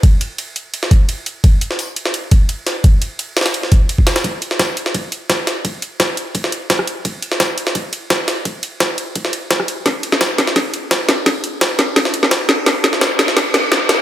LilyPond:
\new DrumStaff \with { instrumentName = "Drums" } \drummode { \time 4/4 \tempo 4 = 171 <hh bd cymr>8 <hh cymr>8 <hh cymr>8 <hh cymr>8 <hh cymr>16 sn16 <hh bd cymr>8 <hh cymr>8 <hh cymr>8 | <hh bd cymr>8 <hh cymr>16 sn16 <hh hho>8 <hh cymr>16 sn16 <hh cymr>8 <hh bd cymr>8 <hh cymr>8 <hh cymr sn>8 | <hh bd cymr>8 <hh cymr>8 <hh cymr>8 <hh hho sn>32 <hho sn>32 <hho sn>16 <hh cymr>16 sn16 <hh bd cymr>8 <hh cymr>16 bd16 <hh hho sn>16 <hho sn>16 | <hh bd cymr>8 <hh cymr>16 sn16 <hh hho bd sn>8 <hh cymr>16 sn16 <hh bd cymr>8 <hh cymr>8 <hh bd cymr sn>8 <hh cymr sn>8 |
<hh bd cymr>8 <hh cymr>8 <hh bd cymr sn>8 <hh cymr>8 <hh bd cymr>16 sn16 <hh cymr>8 <hh bd cymr sn>16 ss16 <hh cymr>8 | <hh bd cymr>8 <hh cymr>16 sn16 <hh hho bd sn>8 <hh cymr>16 sn16 <hh bd cymr>8 <hh cymr>8 <hh bd cymr sn>8 <hh cymr sn>8 | <hh bd cymr>8 <hh cymr>8 <hh bd cymr sn>8 <hh cymr>8 <hh bd cymr>16 sn16 <hh cymr>8 <hh bd cymr sn>16 ss16 <hh cymr>8 | <hh bd cymr sn>8 <hh cymr>16 sn16 <hh hho bd sn>8 <hh cymr sn>16 sn16 <hh bd cymr sn>8 <hh cymr>8 <hh bd cymr sn>8 <hh cymr sn>8 |
<hh bd cymr sn>8 <hh cymr>8 <hh bd cymr sn>8 <hh cymr sn>8 <hh bd cymr sn>16 sn16 <hh cymr>16 sn16 <hh bd cymr sn>8 <hh cymr sn>8 | <hh bd cymr sn>8 <hh cymr sn>16 sn16 <hh hho bd sn>8 <hh cymr sn>16 sn16 <hh bd cymr sn>8 <hh cymr sn>8 <hh bd cymr sn>8 <hh hho sn>8 | }